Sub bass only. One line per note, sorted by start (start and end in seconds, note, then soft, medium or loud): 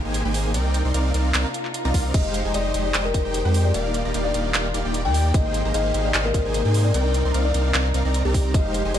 0.05 0.23 G#1 loud
0.25 0.56 G#1 loud
0.54 0.83 C2 loud
0.85 0.92 C2 medium
0.94 1.12 C2 loud
1.14 1.32 C2 loud
1.34 1.45 C2 medium
1.85 1.92 C2 loud
1.94 2.12 C2 loud
2.14 2.43 F1 loud
2.45 2.52 F1 loud
2.54 2.72 F1 loud
2.74 2.92 F1 loud
2.94 3.12 F1 loud
3.14 3.23 F1 loud
3.25 3.43 F1 medium
3.45 3.72 F2 loud
3.74 4.03 D#1 loud
4.05 4.12 D#1 loud
4.14 4.32 D#1 loud
4.34 4.52 D#1 loud
4.54 4.72 D#1 loud
4.74 4.83 D#1 loud
4.85 5.07 D#1 loud
5.05 5.32 D#2 loud
5.34 5.63 G#1 loud
5.65 5.72 G#1 loud
5.74 5.92 G#1 loud
5.94 6.12 G#1 loud
6.14 6.32 G#1 medium
6.34 6.43 G#1 loud
6.45 6.63 G#1 medium
6.65 6.92 G#2 loud
6.94 7.23 C2 loud
7.25 7.32 C2 medium
7.34 7.52 C2 loud
7.54 7.72 C2 loud
7.74 7.92 C2 loud
7.94 8.03 C2 loud
8.05 8.23 C2 medium
8.25 8.56 C2 loud
8.54 8.83 F1 loud
8.85 8.92 F1 loud
8.94 8.99 F1 loud